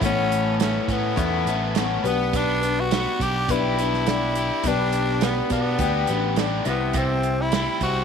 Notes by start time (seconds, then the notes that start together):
Already playing: A3 B3 C#4
0.01 A1 A2 A3 B3 C#4 E4, kick, closed hi-hat
0.32 closed hi-hat
0.60 A3 C#4, snare, closed hi-hat
0.88 A2 B3 C#4, kick, closed hi-hat
1.16 E2 A2 A3 B3 C#4 E4, kick, closed hi-hat
1.46 A1 A3 B3 C#4 E4, closed hi-hat
1.75 A3 B3 C#4 E4, snare, closed hi-hat
2.04 B1 B3 D4 G4 B4, closed hi-hat
2.33 B3 D4, kick, closed hi-hat
2.61 D4 B4, closed hi-hat
2.80 F#4
2.91 B3, snare, closed hi-hat
3.20 B1 D4 G4, kick, closed hi-hat
3.48 B1 B3 D4 E4 G4 B4, kick, closed hi-hat
3.77 B3 D4 G4 B4, closed hi-hat
3.94 snare
4.06 B3 D4 G4 B4, snare, closed hi-hat
4.35 G4, closed hi-hat
4.64 B1 B3 D4 G4, kick, closed hi-hat
4.68 B4
4.93 closed hi-hat
5.21 B3, snare, closed hi-hat
5.50 B2 B3 D4, kick, closed hi-hat
5.78 D2 B3 D4 G4 B4, kick, closed hi-hat
6.07 A1 B3 D4 G4 B4, closed hi-hat
6.36 B3 D4 G4 B4, snare, closed hi-hat
6.65 C2 C3 E3 G3 C4 E4, closed hi-hat
6.69 C3 B3
6.93 C3 C4, kick, closed hi-hat
7.23 closed hi-hat
7.42 E4
7.52 G3, snare, closed hi-hat
7.80 C2 G3 C4 E4 F#4, kick, closed hi-hat